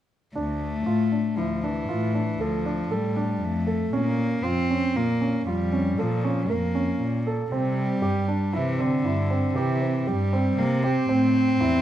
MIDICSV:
0, 0, Header, 1, 4, 480
1, 0, Start_track
1, 0, Key_signature, -1, "minor"
1, 0, Tempo, 511509
1, 328, Time_signature, 7, 2, 24, 8
1, 11088, End_track
2, 0, Start_track
2, 0, Title_t, "Grand piano"
2, 0, Program_c, 0, 0
2, 334, Note_on_c, 0, 62, 57
2, 747, Note_off_c, 0, 62, 0
2, 810, Note_on_c, 0, 65, 57
2, 1017, Note_off_c, 0, 65, 0
2, 1052, Note_on_c, 0, 62, 47
2, 1259, Note_off_c, 0, 62, 0
2, 1289, Note_on_c, 0, 64, 54
2, 1497, Note_off_c, 0, 64, 0
2, 1534, Note_on_c, 0, 62, 46
2, 1741, Note_off_c, 0, 62, 0
2, 1771, Note_on_c, 0, 65, 55
2, 1979, Note_off_c, 0, 65, 0
2, 2013, Note_on_c, 0, 62, 44
2, 2220, Note_off_c, 0, 62, 0
2, 2252, Note_on_c, 0, 69, 55
2, 2460, Note_off_c, 0, 69, 0
2, 2491, Note_on_c, 0, 62, 50
2, 2700, Note_off_c, 0, 62, 0
2, 2729, Note_on_c, 0, 69, 51
2, 2938, Note_off_c, 0, 69, 0
2, 2967, Note_on_c, 0, 62, 51
2, 3386, Note_off_c, 0, 62, 0
2, 3443, Note_on_c, 0, 69, 52
2, 3656, Note_off_c, 0, 69, 0
2, 3688, Note_on_c, 0, 61, 59
2, 4107, Note_off_c, 0, 61, 0
2, 4167, Note_on_c, 0, 65, 54
2, 4379, Note_off_c, 0, 65, 0
2, 4414, Note_on_c, 0, 61, 49
2, 4623, Note_off_c, 0, 61, 0
2, 4647, Note_on_c, 0, 65, 51
2, 4859, Note_off_c, 0, 65, 0
2, 4890, Note_on_c, 0, 61, 48
2, 5101, Note_off_c, 0, 61, 0
2, 5131, Note_on_c, 0, 65, 53
2, 5342, Note_off_c, 0, 65, 0
2, 5377, Note_on_c, 0, 61, 50
2, 5585, Note_off_c, 0, 61, 0
2, 5613, Note_on_c, 0, 69, 49
2, 5823, Note_off_c, 0, 69, 0
2, 5860, Note_on_c, 0, 61, 56
2, 6068, Note_off_c, 0, 61, 0
2, 6097, Note_on_c, 0, 70, 55
2, 6305, Note_off_c, 0, 70, 0
2, 6333, Note_on_c, 0, 61, 54
2, 6751, Note_off_c, 0, 61, 0
2, 6819, Note_on_c, 0, 69, 58
2, 7027, Note_off_c, 0, 69, 0
2, 7057, Note_on_c, 0, 60, 62
2, 7472, Note_off_c, 0, 60, 0
2, 7528, Note_on_c, 0, 67, 59
2, 7740, Note_off_c, 0, 67, 0
2, 7770, Note_on_c, 0, 62, 50
2, 7981, Note_off_c, 0, 62, 0
2, 8007, Note_on_c, 0, 64, 57
2, 8220, Note_off_c, 0, 64, 0
2, 8248, Note_on_c, 0, 60, 54
2, 8460, Note_off_c, 0, 60, 0
2, 8493, Note_on_c, 0, 64, 57
2, 8702, Note_off_c, 0, 64, 0
2, 8729, Note_on_c, 0, 60, 50
2, 8940, Note_off_c, 0, 60, 0
2, 8968, Note_on_c, 0, 67, 58
2, 9179, Note_off_c, 0, 67, 0
2, 9212, Note_on_c, 0, 60, 53
2, 9421, Note_off_c, 0, 60, 0
2, 9453, Note_on_c, 0, 67, 55
2, 9660, Note_off_c, 0, 67, 0
2, 9694, Note_on_c, 0, 60, 61
2, 10107, Note_off_c, 0, 60, 0
2, 10170, Note_on_c, 0, 67, 59
2, 10378, Note_off_c, 0, 67, 0
2, 10407, Note_on_c, 0, 60, 64
2, 10822, Note_off_c, 0, 60, 0
2, 10892, Note_on_c, 0, 64, 65
2, 11088, Note_off_c, 0, 64, 0
2, 11088, End_track
3, 0, Start_track
3, 0, Title_t, "Cello"
3, 0, Program_c, 1, 42
3, 330, Note_on_c, 1, 57, 63
3, 1291, Note_on_c, 1, 53, 54
3, 1305, Note_off_c, 1, 57, 0
3, 1545, Note_on_c, 1, 52, 62
3, 1559, Note_off_c, 1, 53, 0
3, 2263, Note_on_c, 1, 53, 61
3, 2277, Note_off_c, 1, 52, 0
3, 2746, Note_on_c, 1, 55, 61
3, 2760, Note_off_c, 1, 53, 0
3, 3232, Note_on_c, 1, 57, 67
3, 3246, Note_off_c, 1, 55, 0
3, 3689, Note_on_c, 1, 58, 74
3, 3703, Note_off_c, 1, 57, 0
3, 4157, Note_on_c, 1, 60, 74
3, 4171, Note_off_c, 1, 58, 0
3, 4656, Note_on_c, 1, 58, 65
3, 4670, Note_off_c, 1, 60, 0
3, 5138, Note_off_c, 1, 58, 0
3, 5149, Note_on_c, 1, 55, 65
3, 5622, Note_on_c, 1, 53, 61
3, 5636, Note_off_c, 1, 55, 0
3, 6111, Note_on_c, 1, 58, 59
3, 6125, Note_off_c, 1, 53, 0
3, 6826, Note_off_c, 1, 58, 0
3, 7082, Note_on_c, 1, 55, 66
3, 8034, Note_on_c, 1, 52, 60
3, 8048, Note_off_c, 1, 55, 0
3, 8259, Note_on_c, 1, 50, 66
3, 8273, Note_off_c, 1, 52, 0
3, 8983, Note_on_c, 1, 52, 62
3, 8997, Note_off_c, 1, 50, 0
3, 9454, Note_on_c, 1, 55, 72
3, 9468, Note_off_c, 1, 52, 0
3, 9931, Note_on_c, 1, 58, 77
3, 9945, Note_off_c, 1, 55, 0
3, 10164, Note_on_c, 1, 60, 80
3, 10178, Note_off_c, 1, 58, 0
3, 11088, Note_off_c, 1, 60, 0
3, 11088, End_track
4, 0, Start_track
4, 0, Title_t, "Cello"
4, 0, Program_c, 2, 42
4, 326, Note_on_c, 2, 38, 62
4, 753, Note_off_c, 2, 38, 0
4, 811, Note_on_c, 2, 45, 60
4, 1024, Note_off_c, 2, 45, 0
4, 1294, Note_on_c, 2, 38, 57
4, 1718, Note_off_c, 2, 38, 0
4, 1778, Note_on_c, 2, 45, 65
4, 2201, Note_off_c, 2, 45, 0
4, 2249, Note_on_c, 2, 38, 60
4, 2677, Note_off_c, 2, 38, 0
4, 2726, Note_on_c, 2, 45, 58
4, 3155, Note_off_c, 2, 45, 0
4, 3202, Note_on_c, 2, 41, 64
4, 3634, Note_off_c, 2, 41, 0
4, 3687, Note_on_c, 2, 46, 60
4, 4117, Note_off_c, 2, 46, 0
4, 4169, Note_on_c, 2, 41, 59
4, 4385, Note_off_c, 2, 41, 0
4, 4640, Note_on_c, 2, 46, 61
4, 5074, Note_off_c, 2, 46, 0
4, 5129, Note_on_c, 2, 41, 66
4, 5559, Note_off_c, 2, 41, 0
4, 5614, Note_on_c, 2, 46, 67
4, 6042, Note_off_c, 2, 46, 0
4, 6098, Note_on_c, 2, 41, 57
4, 6525, Note_off_c, 2, 41, 0
4, 6575, Note_on_c, 2, 46, 62
4, 7002, Note_off_c, 2, 46, 0
4, 7051, Note_on_c, 2, 48, 66
4, 7480, Note_off_c, 2, 48, 0
4, 7532, Note_on_c, 2, 43, 60
4, 7748, Note_off_c, 2, 43, 0
4, 8013, Note_on_c, 2, 48, 64
4, 8440, Note_off_c, 2, 48, 0
4, 8488, Note_on_c, 2, 43, 69
4, 8917, Note_off_c, 2, 43, 0
4, 8965, Note_on_c, 2, 48, 70
4, 9395, Note_off_c, 2, 48, 0
4, 9451, Note_on_c, 2, 43, 65
4, 9877, Note_off_c, 2, 43, 0
4, 9927, Note_on_c, 2, 48, 72
4, 10353, Note_off_c, 2, 48, 0
4, 10411, Note_on_c, 2, 45, 67
4, 10835, Note_off_c, 2, 45, 0
4, 10896, Note_on_c, 2, 40, 63
4, 11088, Note_off_c, 2, 40, 0
4, 11088, End_track
0, 0, End_of_file